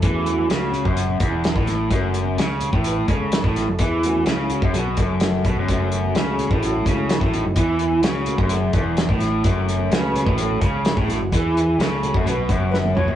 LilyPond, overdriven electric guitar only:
\new Staff \with { instrumentName = "Overdriven electric guitar" } { \clef bass \time 4/4 \key fis \minor \tempo 4 = 128 e4 cis8. fis,8. e,8. a,8. | fis,4 cis8. a,8. cis8. a,8 fis,16 | e4 cis8. fis,16 b,8 fis,4 b,16 fis,16 | fis,4 cis8. a,8. cis8. a,8 fis,16 |
e4 cis8. fis,8. e,8. a,8. | fis,4 cis8. a,8. cis8. a,8 fis,16 | e4 cis8. fis,16 b,8 fis,4 b,16 fis,16 | }